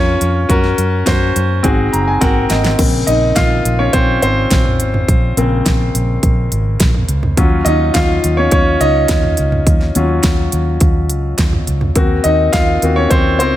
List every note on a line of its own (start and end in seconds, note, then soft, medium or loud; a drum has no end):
0.00 0.16 F2 medium
0.00 0.49 C#4 medium
0.00 0.52 F4 medium
0.00 0.51 A#4 medium
0.00 0.35 C#5 medium
0.21 0.45 F2 medium
0.21 closed hi-hat medium
0.49 0.73 F#2 medium
0.49 0.92 C#4 medium
0.49 0.92 F#4 medium
0.49 0.93 A#4 medium
0.49 kick loud
0.49 closed hi-hat medium
0.64 snare soft
0.78 1.02 F#2 medium
0.78 closed hi-hat medium
1.06 1.31 F#2 medium
1.06 1.49 C#4 medium
1.06 1.50 F#4 medium
1.06 1.50 C5 medium
1.06 kick medium
1.06 snare loud
1.06 closed hi-hat medium
1.36 1.59 F#2 medium
1.36 closed hi-hat medium
1.63 1.88 G#1 medium
1.63 2.46 G#2 medium
1.63 2.06 C4 medium
1.63 2.07 F#4 medium
1.63 2.07 G#4 medium
1.63 kick medium
1.63 closed hi-hat medium
1.93 2.17 F#1 medium
1.93 2.06 A#5 medium
1.93 closed hi-hat soft
2.08 2.21 G#5 medium
2.21 2.45 G#1 medium
2.21 2.64 C4 medium
2.21 2.64 F#4 medium
2.21 2.64 A#4 medium
2.21 2.48 F#5 medium
2.21 kick medium
2.21 snare soft
2.21 closed hi-hat medium
2.50 2.74 G#1 medium
2.50 2.77 D#5 medium
2.50 snare medium
2.50 closed hi-hat medium
2.64 snare medium
2.78 3.02 A#1 medium
2.78 5.04 C#3 medium
2.78 5.04 A#3 soft
2.78 3.92 C4 medium
2.78 kick loud
2.78 closed hi-hat medium
2.78 crash medium
3.07 3.31 A#1 medium
3.07 3.35 D#4 medium
3.07 3.34 D#5 medium
3.07 closed hi-hat medium
3.36 3.60 A#1 medium
3.36 3.76 F4 medium
3.36 3.80 F5 medium
3.36 kick loud
3.36 snare medium
3.36 closed hi-hat medium
3.65 3.88 A#1 medium
3.65 closed hi-hat medium
3.79 3.93 C#4 soft
3.79 3.94 C#5 medium
3.93 4.17 A#1 medium
3.93 4.20 C4 medium
3.93 4.21 C5 medium
3.93 kick medium
3.93 closed hi-hat medium
4.22 4.46 G#1 medium
4.22 4.76 C4 medium
4.22 4.76 C5 medium
4.22 closed hi-hat medium
4.51 4.80 A#1 medium
4.51 kick medium
4.51 snare medium
4.51 closed hi-hat medium
4.65 floor tom medium
4.80 5.03 G#1 medium
4.80 closed hi-hat medium
4.94 floor tom medium
5.08 5.32 A#1 medium
5.08 kick loud
5.08 closed hi-hat medium
5.37 5.60 A#1 medium
5.37 5.75 C#3 medium
5.37 5.75 A#3 soft
5.37 5.76 C4 medium
5.37 closed hi-hat medium
5.66 5.89 A#1 medium
5.66 kick medium
5.66 snare medium
5.66 closed hi-hat medium
5.94 6.18 A#1 medium
5.94 closed hi-hat medium
6.23 6.47 A#1 medium
6.23 kick medium
6.23 closed hi-hat medium
6.52 6.75 G#1 medium
6.52 closed hi-hat medium
6.80 7.04 A#1 medium
6.80 kick loud
6.80 snare medium
6.80 closed hi-hat medium
6.95 floor tom medium
7.09 7.32 C#2 medium
7.09 closed hi-hat medium
7.23 floor tom medium
7.37 7.61 D#2 medium
7.37 7.75 F#3 medium
7.37 7.76 C#4 medium
7.37 7.76 F4 medium
7.37 kick loud
7.37 closed hi-hat medium
7.65 7.89 D#2 medium
7.65 7.93 D#4 medium
7.65 7.92 D#5 medium
7.65 closed hi-hat medium
7.94 8.18 D#2 loud
7.94 8.35 F4 medium
7.94 8.34 F5 medium
7.94 kick medium
7.94 snare loud
7.94 closed hi-hat medium
8.24 8.47 D#2 medium
8.24 closed hi-hat medium
8.37 8.44 C#4 medium
8.37 8.42 C#5 medium
8.51 8.76 D#2 medium
8.51 8.80 C#4 medium
8.51 8.79 C#5 medium
8.51 kick loud
8.51 closed hi-hat medium
8.81 9.04 C#2 medium
8.81 9.35 D#4 medium
8.81 9.34 D#5 medium
8.81 closed hi-hat medium
9.08 9.33 D#2 medium
9.08 kick loud
9.08 snare medium
9.08 closed hi-hat medium
9.23 floor tom medium
9.37 9.62 C#2 medium
9.37 closed hi-hat medium
9.52 floor tom medium
9.67 9.90 D#2 medium
9.67 kick loud
9.67 closed hi-hat medium
9.81 snare soft
9.95 10.19 D#2 medium
9.95 11.92 F#3 soft
9.95 11.92 C#4 soft
9.95 11.93 F4 medium
9.95 closed hi-hat medium
10.23 10.47 D#2 medium
10.23 kick medium
10.23 snare loud
10.23 closed hi-hat medium
10.52 10.76 D#2 medium
10.52 closed hi-hat medium
10.81 11.09 D#2 medium
10.81 kick loud
10.81 closed hi-hat medium
11.09 11.33 C#2 medium
11.09 closed hi-hat medium
11.38 11.62 D#2 medium
11.38 kick loud
11.38 snare loud
11.38 closed hi-hat medium
11.53 floor tom medium
11.67 11.91 C#2 medium
11.67 closed hi-hat medium
11.81 floor tom medium
11.96 12.19 D#2 medium
11.96 12.34 A#3 medium
11.96 12.34 C4 soft
11.96 12.35 F#4 medium
11.96 kick loud
11.96 closed hi-hat medium
12.24 12.48 D#2 medium
12.24 12.52 D#4 medium
12.24 12.54 D#5 medium
12.24 closed hi-hat medium
12.53 12.77 D#2 medium
12.53 12.94 F4 medium
12.53 12.93 F5 medium
12.53 kick loud
12.53 snare loud
12.53 closed hi-hat medium
12.82 13.06 D#2 medium
12.82 13.08 A#3 soft
12.82 13.09 C4 soft
12.82 13.09 F#4 medium
12.82 closed hi-hat medium
12.96 13.11 C#4 medium
12.96 13.11 C#5 medium
13.10 13.40 D#2 medium
13.10 13.38 C4 medium
13.10 13.37 C5 medium
13.10 kick loud
13.10 closed hi-hat medium
13.39 13.56 C#2 medium
13.39 13.56 C4 medium
13.39 13.56 C5 medium
13.39 closed hi-hat medium